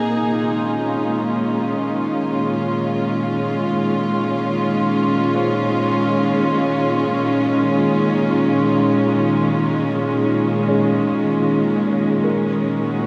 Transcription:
Already playing: string section A#3 D#4 G#4
0.03 string section A#2
0.16 string section D#3
0.29 string section F4
0.49 string section G#3
0.57 string section C#4
0.80 felt piano G#4
5.35 felt piano C5
10.68 felt piano G#4 C#5
12.24 felt piano A#4
12.86 string section F#4

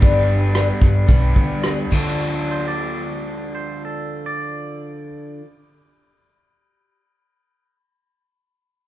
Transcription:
0.00 picked electric bass G1, twelve-string acoustic guitar G2 D3 G3 B3 D4 B4, overdriven electric guitar G3 B3 D4 B4, kick, open hi-hat
0.29 open hi-hat
0.40 twelve-string acoustic guitar G3 B3 D4 B4
0.53 twelve-string acoustic guitar G2 D3 G3 B3 D4 B4, cross-stick, open hi-hat
0.67 twelve-string acoustic guitar G3 B3 D4 B4
0.80 picked electric bass G2, twelve-string acoustic guitar G3 B3 D4 B4, kick, open hi-hat
1.07 picked electric bass B1, overdriven electric guitar G3 B3 D4 B4, kick, open hi-hat
1.35 picked electric bass D2, twelve-string acoustic guitar G3 B3 D4 B4, kick, open hi-hat
1.62 twelve-string acoustic guitar G2 D3 G3 B3 D4 B4, cross-stick, open hi-hat
1.77 twelve-string acoustic guitar G3 B3 D4 B4
1.89 picked electric bass D2, twelve-string acoustic guitar D3, overdriven electric guitar D3 D4, kick, ride
1.93 twelve-string acoustic guitar F3 C4, overdriven electric guitar F4 A4
2.01 twelve-string acoustic guitar D4 A4
2.51 clean electric guitar C5
2.68 clean electric guitar D5
3.55 clean electric guitar C5
3.85 clean electric guitar A4
4.26 clean electric guitar D5

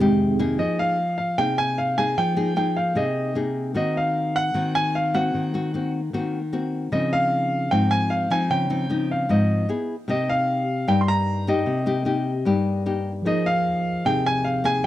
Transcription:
Already playing: tine electric piano F2 D#3 G#3 D#4 G4 G#4, nylon-string guitar C3
0.00 nylon-string guitar G#3 D#4 G4, tine electric piano C4
0.39 nylon-string guitar A#3 D#4 G#4
0.58 nylon-string guitar F3, grand piano D#5
0.79 grand piano F5
1.18 grand piano F5
1.38 nylon-string guitar C3 A#3 D#4 G#4, grand piano G5
1.58 grand piano G#5
1.78 grand piano F5
1.98 nylon-string guitar A#3 D#4 G#4, grand piano G#5
2.18 nylon-string guitar F3, grand piano G5
2.36 nylon-string guitar A#3 D#4 G#4
2.56 nylon-string guitar A#3 D#4 G#4, grand piano G5
2.77 grand piano F5
2.95 nylon-string guitar C3 A#3 D#4 G#4, grand piano D#5
3.35 nylon-string guitar A#3 D#4 G#4
3.74 nylon-string guitar D#3 A#3 C4 F#4, grand piano D#5
3.97 grand piano F5
4.36 grand piano F#5
4.54 nylon-string guitar D#3 A#3 C4 F#4
4.75 grand piano G#5
4.95 grand piano F5
5.14 nylon-string guitar A#3 C4 F#4, grand piano F#5
5.34 nylon-string guitar D#3
5.54 nylon-string guitar A#3 C4 F#4
5.74 nylon-string guitar A#3 C4 F#4
6.13 nylon-string guitar D#3 A#3 C4 F#4
6.53 nylon-string guitar A#3 C4 F#4
6.92 nylon-string guitar C#3 F3 C4 D#4, grand piano D#5
7.13 grand piano F5
7.71 nylon-string guitar G#2 F3 C4 D#4, grand piano G5
7.91 grand piano G#5
8.10 grand piano F5
8.30 nylon-string guitar F3 C4 D#4, grand piano G#5
8.50 nylon-string guitar C#3, grand piano G5
8.70 nylon-string guitar F3 C4 D#4
8.90 nylon-string guitar F3 C4 D#4
9.11 grand piano F5
9.29 nylon-string guitar G#2 F3 C4 D#4, grand piano D#5
9.69 nylon-string guitar B3 E4 G#4
10.08 nylon-string guitar C3 A#3 D#4 G4, grand piano D#5
10.29 grand piano F5
10.88 nylon-string guitar G2 A#3 D#4 G4, grand piano G5
11.01 grand piano C6
11.08 grand piano A#5
11.47 nylon-string guitar A#3 D#4 G4, grand piano D#5
11.66 nylon-string guitar C3
11.86 nylon-string guitar A#3 D#4 G4
12.05 nylon-string guitar A#3 D#4 G4
12.45 nylon-string guitar G2 A#3 D#4 G4
12.86 nylon-string guitar A#3 D#4 G4
13.22 tine electric piano F3 G#4 A#4, nylon-string guitar F3 A#3
13.26 nylon-string guitar D#4 G#4, tine electric piano C5 D#5, grand piano D#5
13.46 grand piano F5
14.05 nylon-string guitar C3 A#3 D#4 G#4, grand piano G5
14.26 grand piano G#5
14.44 grand piano F5
14.64 nylon-string guitar A#3 D#4 G#4, grand piano G#5

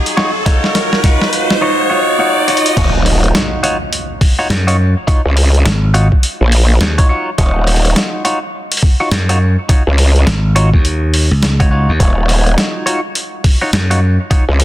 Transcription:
Already playing: clean electric guitar D#4 F4 F#4 C#5, riser
0.06 closed hi-hat
0.17 clean electric guitar D#4 F4 F#4 C#5, snare
0.46 clean electric guitar D#4 F4 F#4 C#5, kick, snare, closed hi-hat
0.64 snare
0.75 snare, closed hi-hat
0.93 snare
1.03 clean electric guitar D#4 F4 F#4 C#5, kick, snare, closed hi-hat
1.21 snare
1.33 closed hi-hat
1.50 snare
1.61 clean electric guitar D#4 F4 F#4 C#5
1.90 clean electric guitar D#4 F4 F#4 C#5
2.19 clean electric guitar D#4 F4 F#4 C#5
2.48 clean electric guitar D#4 F4 F#4 C#5, closed hi-hat
2.57 closed hi-hat
2.66 closed hi-hat
2.76 wobble bass D#1, clean electric guitar D#4 F4 F#4 C#5, kick, closed hi-hat, crash, impact
3.06 cross-stick, open hi-hat
3.24 closed hi-hat
3.35 snare, closed hi-hat
3.63 clean electric guitar D#4 F4 F#4 C#5, closed hi-hat
3.93 closed hi-hat
4.21 kick, open hi-hat
4.39 clean electric guitar D#4 F4 F#4 C#5
4.50 slap bass F#2, snare, closed hi-hat
4.67 clean electric guitar D#4 F4 F#4 C#5, closed hi-hat
5.07 clean electric guitar D#4 F4 F#4 C#5, kick, closed hi-hat
5.25 wobble bass C#2
5.37 cross-stick, open hi-hat
5.54 closed hi-hat
5.65 slap bass G#1, cross-stick, snare, closed hi-hat
5.94 clean electric guitar D#4 F4 F#4 C#5, closed hi-hat
6.12 kick
6.23 closed hi-hat
6.41 wobble bass A#1
6.52 open hi-hat
6.81 slap bass D#2, snare, closed hi-hat
6.98 clean electric guitar D#4 F4 F#4 C#5, kick, closed hi-hat
7.09 clean electric guitar D#4 F4 F#4 C#5
7.38 wobble bass D#1, clean electric guitar D#4 F4 F#4 C#5, kick, closed hi-hat
7.67 cross-stick, open hi-hat
7.76 open hi-hat
7.85 closed hi-hat, open hi-hat
7.91 open hi-hat
7.96 snare, closed hi-hat
8.25 clean electric guitar D#4 F4 F#4 C#5, closed hi-hat
8.72 closed hi-hat
8.77 open hi-hat
8.83 kick
9.00 clean electric guitar D#4 F4 F#4 C#5
9.11 slap bass F#2, snare, closed hi-hat
9.29 clean electric guitar D#4 F4 F#4 C#5, closed hi-hat
9.69 clean electric guitar D#4 F4 F#4 C#5, kick, closed hi-hat
9.87 wobble bass C#2
9.98 cross-stick, open hi-hat
10.16 closed hi-hat
10.27 slap bass G#1, cross-stick, snare, closed hi-hat
10.56 clean electric guitar D#4 F4 F#4 C#5, closed hi-hat
10.73 slap bass D#2, kick
10.85 closed hi-hat
11.14 open hi-hat
11.31 slap bass C#2
11.43 snare, closed hi-hat
11.60 clean electric guitar D#4 F4 F#4 C#5, kick, closed hi-hat
11.71 clean electric guitar D#4 F4 F#4 C#5
11.89 slap bass D#2
12.00 wobble bass D#1, clean electric guitar D#4 F4 F#4 C#5, kick, closed hi-hat
12.29 cross-stick, open hi-hat
12.47 closed hi-hat
12.58 snare, closed hi-hat
12.86 clean electric guitar D#4 F4 F#4 C#5, closed hi-hat
13.15 closed hi-hat
13.44 kick, open hi-hat
13.61 clean electric guitar D#4 F4 F#4 C#5
13.73 slap bass F#2, snare, closed hi-hat
13.90 clean electric guitar D#4 F4 F#4 C#5, closed hi-hat
14.31 clean electric guitar D#4 F4 F#4 C#5, kick, closed hi-hat
14.49 wobble bass C#2
14.60 cross-stick, open hi-hat

